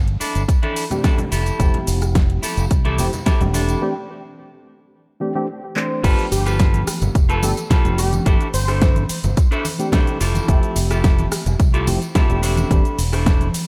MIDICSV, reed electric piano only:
0, 0, Header, 1, 2, 480
1, 0, Start_track
1, 0, Key_signature, 0, "major"
1, 0, Tempo, 555556
1, 1380, Time_signature, 4, 2, 24, 8
1, 11811, End_track
2, 0, Start_track
2, 0, Title_t, "Reed electric piano"
2, 0, Program_c, 0, 4
2, 779, Note_on_c, 0, 52, 89
2, 781, Note_on_c, 0, 57, 87
2, 783, Note_on_c, 0, 60, 82
2, 785, Note_on_c, 0, 62, 84
2, 787, Note_on_c, 0, 67, 99
2, 1123, Note_off_c, 0, 52, 0
2, 1124, Note_off_c, 0, 57, 0
2, 1125, Note_off_c, 0, 60, 0
2, 1126, Note_off_c, 0, 62, 0
2, 1127, Note_off_c, 0, 67, 0
2, 1371, Note_on_c, 0, 53, 85
2, 1374, Note_on_c, 0, 57, 81
2, 1378, Note_on_c, 0, 60, 81
2, 1383, Note_on_c, 0, 64, 79
2, 1387, Note_on_c, 0, 67, 95
2, 2548, Note_off_c, 0, 53, 0
2, 2549, Note_off_c, 0, 57, 0
2, 2551, Note_off_c, 0, 60, 0
2, 2553, Note_off_c, 0, 64, 0
2, 2556, Note_off_c, 0, 67, 0
2, 2578, Note_on_c, 0, 53, 99
2, 2580, Note_on_c, 0, 57, 87
2, 2583, Note_on_c, 0, 60, 93
2, 2585, Note_on_c, 0, 64, 90
2, 2586, Note_on_c, 0, 67, 111
2, 2677, Note_off_c, 0, 53, 0
2, 2678, Note_off_c, 0, 57, 0
2, 2679, Note_off_c, 0, 60, 0
2, 2680, Note_off_c, 0, 64, 0
2, 2681, Note_off_c, 0, 67, 0
2, 2941, Note_on_c, 0, 52, 87
2, 2943, Note_on_c, 0, 57, 76
2, 2945, Note_on_c, 0, 60, 78
2, 2948, Note_on_c, 0, 62, 79
2, 2949, Note_on_c, 0, 67, 95
2, 3270, Note_off_c, 0, 52, 0
2, 3271, Note_off_c, 0, 57, 0
2, 3272, Note_off_c, 0, 60, 0
2, 3274, Note_off_c, 0, 62, 0
2, 3274, Note_off_c, 0, 67, 0
2, 3293, Note_on_c, 0, 52, 86
2, 3296, Note_on_c, 0, 57, 81
2, 3299, Note_on_c, 0, 60, 83
2, 3300, Note_on_c, 0, 62, 82
2, 3303, Note_on_c, 0, 67, 102
2, 3394, Note_off_c, 0, 52, 0
2, 3396, Note_off_c, 0, 57, 0
2, 3397, Note_off_c, 0, 60, 0
2, 3398, Note_off_c, 0, 62, 0
2, 3399, Note_off_c, 0, 67, 0
2, 4493, Note_on_c, 0, 52, 86
2, 4496, Note_on_c, 0, 57, 78
2, 4498, Note_on_c, 0, 60, 79
2, 4500, Note_on_c, 0, 62, 78
2, 4502, Note_on_c, 0, 67, 95
2, 4594, Note_off_c, 0, 52, 0
2, 4596, Note_off_c, 0, 57, 0
2, 4597, Note_off_c, 0, 60, 0
2, 4598, Note_off_c, 0, 62, 0
2, 4599, Note_off_c, 0, 67, 0
2, 4618, Note_on_c, 0, 52, 85
2, 4621, Note_on_c, 0, 57, 81
2, 4622, Note_on_c, 0, 60, 84
2, 4625, Note_on_c, 0, 62, 81
2, 4627, Note_on_c, 0, 67, 97
2, 4712, Note_off_c, 0, 52, 0
2, 4713, Note_off_c, 0, 57, 0
2, 4714, Note_off_c, 0, 60, 0
2, 4715, Note_off_c, 0, 62, 0
2, 4716, Note_off_c, 0, 67, 0
2, 4973, Note_on_c, 0, 52, 88
2, 4976, Note_on_c, 0, 57, 85
2, 4978, Note_on_c, 0, 60, 83
2, 4981, Note_on_c, 0, 62, 83
2, 4983, Note_on_c, 0, 72, 99
2, 5189, Note_off_c, 0, 52, 0
2, 5190, Note_off_c, 0, 57, 0
2, 5191, Note_off_c, 0, 60, 0
2, 5193, Note_off_c, 0, 62, 0
2, 5193, Note_off_c, 0, 72, 0
2, 5210, Note_on_c, 0, 53, 89
2, 5215, Note_on_c, 0, 57, 82
2, 5220, Note_on_c, 0, 59, 79
2, 5223, Note_on_c, 0, 62, 81
2, 5227, Note_on_c, 0, 67, 98
2, 6387, Note_off_c, 0, 53, 0
2, 6389, Note_off_c, 0, 57, 0
2, 6392, Note_off_c, 0, 59, 0
2, 6394, Note_off_c, 0, 62, 0
2, 6396, Note_off_c, 0, 67, 0
2, 6413, Note_on_c, 0, 53, 97
2, 6416, Note_on_c, 0, 57, 90
2, 6416, Note_on_c, 0, 59, 88
2, 6419, Note_on_c, 0, 62, 93
2, 6421, Note_on_c, 0, 67, 110
2, 6514, Note_off_c, 0, 53, 0
2, 6516, Note_off_c, 0, 57, 0
2, 6516, Note_off_c, 0, 59, 0
2, 6517, Note_off_c, 0, 62, 0
2, 6518, Note_off_c, 0, 67, 0
2, 6778, Note_on_c, 0, 53, 85
2, 6780, Note_on_c, 0, 57, 79
2, 6782, Note_on_c, 0, 59, 76
2, 6784, Note_on_c, 0, 62, 77
2, 6786, Note_on_c, 0, 67, 96
2, 7109, Note_off_c, 0, 53, 0
2, 7110, Note_off_c, 0, 57, 0
2, 7111, Note_off_c, 0, 59, 0
2, 7112, Note_off_c, 0, 62, 0
2, 7113, Note_off_c, 0, 67, 0
2, 7135, Note_on_c, 0, 52, 94
2, 7136, Note_on_c, 0, 57, 83
2, 7138, Note_on_c, 0, 60, 85
2, 7141, Note_on_c, 0, 62, 82
2, 7143, Note_on_c, 0, 67, 100
2, 7235, Note_off_c, 0, 52, 0
2, 7236, Note_off_c, 0, 57, 0
2, 7237, Note_off_c, 0, 60, 0
2, 7238, Note_off_c, 0, 62, 0
2, 7239, Note_off_c, 0, 67, 0
2, 8455, Note_on_c, 0, 52, 92
2, 8458, Note_on_c, 0, 57, 85
2, 8460, Note_on_c, 0, 60, 87
2, 8462, Note_on_c, 0, 62, 85
2, 8464, Note_on_c, 0, 67, 106
2, 8801, Note_off_c, 0, 52, 0
2, 8803, Note_off_c, 0, 57, 0
2, 8804, Note_off_c, 0, 60, 0
2, 8804, Note_off_c, 0, 62, 0
2, 8806, Note_off_c, 0, 67, 0
2, 9049, Note_on_c, 0, 53, 91
2, 9053, Note_on_c, 0, 57, 81
2, 9057, Note_on_c, 0, 60, 84
2, 9062, Note_on_c, 0, 76, 84
2, 9066, Note_on_c, 0, 67, 96
2, 10226, Note_off_c, 0, 53, 0
2, 10228, Note_off_c, 0, 57, 0
2, 10231, Note_off_c, 0, 60, 0
2, 10233, Note_off_c, 0, 76, 0
2, 10235, Note_off_c, 0, 67, 0
2, 10255, Note_on_c, 0, 53, 100
2, 10257, Note_on_c, 0, 57, 94
2, 10260, Note_on_c, 0, 60, 93
2, 10261, Note_on_c, 0, 64, 93
2, 10263, Note_on_c, 0, 67, 109
2, 10355, Note_off_c, 0, 53, 0
2, 10356, Note_off_c, 0, 57, 0
2, 10358, Note_off_c, 0, 60, 0
2, 10358, Note_off_c, 0, 64, 0
2, 10359, Note_off_c, 0, 67, 0
2, 10620, Note_on_c, 0, 52, 85
2, 10622, Note_on_c, 0, 57, 81
2, 10623, Note_on_c, 0, 60, 81
2, 10625, Note_on_c, 0, 62, 82
2, 10628, Note_on_c, 0, 67, 98
2, 10950, Note_off_c, 0, 52, 0
2, 10951, Note_off_c, 0, 57, 0
2, 10951, Note_off_c, 0, 60, 0
2, 10952, Note_off_c, 0, 62, 0
2, 10954, Note_off_c, 0, 67, 0
2, 10975, Note_on_c, 0, 52, 93
2, 10976, Note_on_c, 0, 57, 83
2, 10978, Note_on_c, 0, 60, 81
2, 10981, Note_on_c, 0, 62, 83
2, 10984, Note_on_c, 0, 67, 98
2, 11075, Note_off_c, 0, 52, 0
2, 11076, Note_off_c, 0, 57, 0
2, 11077, Note_off_c, 0, 60, 0
2, 11078, Note_off_c, 0, 62, 0
2, 11080, Note_off_c, 0, 67, 0
2, 11811, End_track
0, 0, End_of_file